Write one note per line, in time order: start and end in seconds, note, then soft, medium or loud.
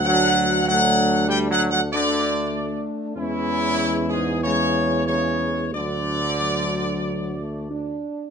0.00 2.85 D2 loud
0.05 0.63 F#3 loud
0.05 0.64 A3 medium
0.05 0.64 D4 medium
0.05 0.63 F#5 loud
0.66 1.25 F#3 loud
0.66 1.89 A3 loud
0.66 1.89 D4 medium
0.66 1.26 F#5 loud
1.29 1.49 G3 loud
1.29 1.38 G5 loud
1.49 1.69 F#3 loud
1.49 1.60 F#5 loud
1.70 1.80 F#3 loud
1.70 1.80 F#5 loud
1.92 2.81 D3 loud
1.92 3.12 A3 loud
1.92 3.13 D4 loud
1.92 2.81 D5 loud
3.15 4.06 E2 loud
3.15 5.74 E2 loud
3.15 4.39 G#3 medium
3.15 4.39 C#4 loud
3.15 4.06 E4 loud
4.10 4.41 G#2 medium
4.10 4.40 G#4 medium
4.42 5.04 C#3 loud
4.42 5.05 G#3 medium
4.42 5.04 C#4 medium
4.42 5.03 C#5 loud
5.06 5.69 C#3 medium
5.06 5.69 G#3 medium
5.06 5.69 C#4 medium
5.06 5.68 C#5 loud
5.72 8.04 D2 medium
5.72 8.01 D3 loud
5.72 6.22 F#3 medium
5.72 6.22 D4 medium
5.72 8.00 D5 loud
6.39 7.34 F#3 medium
7.39 7.71 A3 medium
7.69 8.30 D4 medium